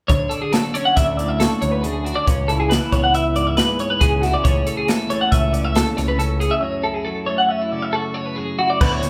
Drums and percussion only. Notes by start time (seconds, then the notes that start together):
0.09 kick, closed hi-hat
0.31 closed hi-hat
0.53 snare, closed hi-hat
0.75 closed hi-hat
0.97 kick, snare, closed hi-hat
1.19 closed hi-hat
1.40 snare, closed hi-hat
1.62 closed hi-hat
1.84 closed hi-hat
2.06 closed hi-hat
2.27 kick, closed hi-hat
2.49 closed hi-hat
2.71 snare, closed hi-hat
2.92 kick, closed hi-hat
3.14 closed hi-hat
3.36 closed hi-hat
3.57 snare, closed hi-hat
3.79 closed hi-hat
4.01 kick, closed hi-hat
4.23 snare, closed hi-hat
4.45 kick, closed hi-hat
4.67 closed hi-hat
4.88 snare, closed hi-hat
5.10 closed hi-hat
5.32 kick, closed hi-hat
5.54 closed hi-hat
5.75 snare, closed hi-hat
5.98 snare, closed hi-hat
6.20 closed hi-hat
6.41 closed hi-hat
8.81 kick, crash
9.03 snare, closed hi-hat